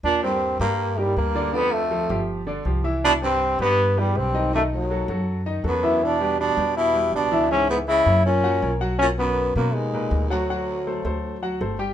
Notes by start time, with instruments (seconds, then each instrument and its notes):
0.03 upright bass D#2, baritone saxophone A#2, trombone D4
0.23 baritone saxophone G2, grand piano G3 G4 A#4, trombone C4
0.60 upright bass G2, baritone saxophone G2, grand piano G3 G4 A#4, trombone A#3
0.97 baritone saxophone D#2, grand piano G3 G4 A#4, trombone G3
1.16 upright bass D2, baritone saxophone G2, trombone A#3
1.35 grand piano D3 D4 D5
1.53 baritone saxophone F2, grand piano D3 D4 D5, trombone B3
1.73 baritone saxophone F2, trombone A3
1.91 grand piano F3 F4 A4
2.10 upright bass G1, grand piano F3 F4 G4
2.47 grand piano D3 D4 D5
2.65 upright bass C2, grand piano F3 F4 G4
2.84 grand piano E3 E4 E5
3.05 baritone saxophone B2, trombone D4
3.21 baritone saxophone G2, grand piano G3 G4 B4, trombone C4
3.59 upright bass G2, baritone saxophone G2, grand piano G3 G4 B4, trombone B3
3.97 baritone saxophone E2, grand piano G3 G4 B4, trombone G3
4.15 upright bass B1, baritone saxophone G2, trombone C4
4.34 grand piano D#3 D#4 D#5
4.53 baritone saxophone F#2, grand piano D#3 D#4 D#5, trombone A3
4.71 baritone saxophone D#2, trombone F#3
4.90 grand piano F#3 F#4 A4
5.08 upright bass F#2, grand piano F#3 F#4 A4
5.46 grand piano D#3 D#4 D#5
5.63 upright bass E2, baritone saxophone F#2, grand piano F#3 F#4 A4
5.68 trombone B3
5.83 grand piano E3 E4 E5
6.04 baritone saxophone B2, trombone D4
6.21 grand piano G3 G4 B4
6.40 baritone saxophone B2, trombone D4
6.57 upright bass E2, grand piano G3 G4 B4
6.77 baritone saxophone B2, trombone E4
6.94 grand piano G3 G4 B4
7.12 upright bass C#2, baritone saxophone B2, trombone D4
7.32 grand piano E3 E4 E5
7.51 baritone saxophone G#2, grand piano E3 E4 E5, trombone C#4
7.70 baritone saxophone G#2, trombone B3
7.87 baritone saxophone C#3, grand piano G#3 G#4 B4, trombone E4
8.06 upright bass F#2, grand piano A#3 A#4 C#5
8.25 baritone saxophone A#2, trombone C#4
8.44 grand piano F#3 F#4 F#5
8.62 upright bass B1, grand piano A#3 A#4 C#5
8.81 grand piano F#3 F#4 F#5
8.99 baritone saxophone A#2, trombone C#4
9.19 baritone saxophone F#2, trombone B3, grand piano B3 A#4 B4
9.55 baritone saxophone F#2, upright bass B2, trombone A#3, grand piano B3 A#4 B4
9.74 baritone saxophone D#2, trombone G#3
9.93 grand piano A#2 A#4 B4
10.11 upright bass D2
10.30 baritone saxophone D2, trombone F#3, grand piano F#3 F#4 F#5
10.50 grand piano F#3 F#4 F#5
10.87 grand piano A3 A4 C5
11.05 upright bass D2, grand piano A3 A4 C5
11.42 grand piano F#3 F#4 F#5
11.61 upright bass G1, grand piano A3 A4 C5
11.79 grand piano G3 G4 G5